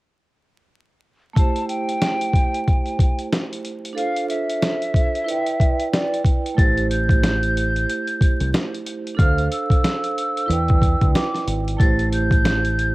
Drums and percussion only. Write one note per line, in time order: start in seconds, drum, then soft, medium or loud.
1.36 kick loud
1.36 closed hi-hat medium
1.56 closed hi-hat soft
1.69 closed hi-hat medium
1.89 closed hi-hat medium
2.02 snare loud
2.02 snare medium
2.02 closed hi-hat medium
2.21 closed hi-hat medium
2.33 kick medium
2.33 closed hi-hat medium
2.54 closed hi-hat soft
2.68 kick loud
2.68 closed hi-hat medium
2.86 closed hi-hat medium
2.99 kick loud
2.99 closed hi-hat medium
3.19 closed hi-hat soft
3.33 snare loud
3.33 snare medium
3.33 closed hi-hat medium
3.53 closed hi-hat soft
3.65 closed hi-hat medium
3.85 closed hi-hat medium
3.98 closed hi-hat medium
4.17 closed hi-hat soft
4.30 closed hi-hat medium
4.50 closed hi-hat soft
4.62 snare loud
4.62 snare medium
4.62 closed hi-hat medium
4.82 closed hi-hat medium
4.94 kick medium
4.94 closed hi-hat medium
5.15 closed hi-hat soft
5.29 closed hi-hat medium
5.46 closed hi-hat medium
5.60 kick loud
5.60 closed hi-hat medium
5.80 closed hi-hat soft
5.93 snare loud
5.93 snare medium
5.93 closed hi-hat medium
6.14 closed hi-hat soft
6.25 kick loud
6.25 closed hi-hat medium
6.46 closed hi-hat medium
6.58 kick loud
6.58 closed hi-hat medium
6.77 closed hi-hat soft
6.91 closed hi-hat medium
7.09 kick loud
7.09 closed hi-hat medium
7.23 snare loud
7.23 closed hi-hat medium
7.43 closed hi-hat soft
7.57 closed hi-hat medium
7.76 closed hi-hat soft
7.89 closed hi-hat medium
8.07 closed hi-hat soft
8.21 kick loud
8.21 closed hi-hat medium
8.40 closed hi-hat soft
8.54 snare loud
8.54 snare medium
8.54 closed hi-hat medium
8.75 closed hi-hat soft
8.87 closed hi-hat medium
9.07 closed hi-hat medium
9.19 kick loud
9.19 closed hi-hat medium
9.38 closed hi-hat soft
9.52 closed hi-hat medium
9.70 kick medium
9.70 closed hi-hat medium
9.84 snare loud
9.84 closed hi-hat medium
10.04 closed hi-hat soft
10.18 closed hi-hat medium
10.37 closed hi-hat soft
10.50 closed hi-hat medium
10.68 kick medium
10.68 closed hi-hat soft
10.82 kick loud
10.82 closed hi-hat medium
11.01 kick medium
11.01 closed hi-hat soft
11.15 snare loud
11.15 snare medium
11.15 closed hi-hat medium
11.35 snare soft
11.35 closed hi-hat soft
11.48 closed hi-hat medium
11.68 closed hi-hat medium
11.80 kick loud
11.80 closed hi-hat medium
11.99 closed hi-hat soft
12.13 closed hi-hat medium
12.31 kick medium
12.31 closed hi-hat medium
12.45 snare loud
12.45 closed hi-hat medium
12.65 closed hi-hat soft
12.79 closed hi-hat medium